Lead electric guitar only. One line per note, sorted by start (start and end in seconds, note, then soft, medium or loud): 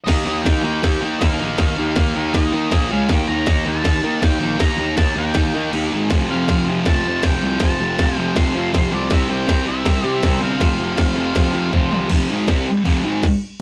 0.04 0.45 D#5 medium
0.42 1.15 G5 medium
1.19 2.34 F5 loud
2.35 2.93 D#5 loud
2.92 3.11 F5 loud
3.11 3.30 G5 loud
3.28 3.63 A#5 loud
3.68 4.25 A5 loud
4.23 4.58 G5 loud
4.60 4.95 A#5 loud
4.97 5.15 A5 loud
5.18 5.70 G5 medium
6.30 6.65 F5 medium
6.88 7.25 A5 loud
7.23 7.62 G5 loud
7.61 8.18 A5 loud
8.18 8.36 G5 loud
8.36 8.94 C6 loud
8.94 9.12 D5 medium
9.13 9.30 E5 medium
9.32 9.67 G5 loud
9.67 10.14 E5 medium
10.15 10.41 E5 medium
10.43 11.70 F5 medium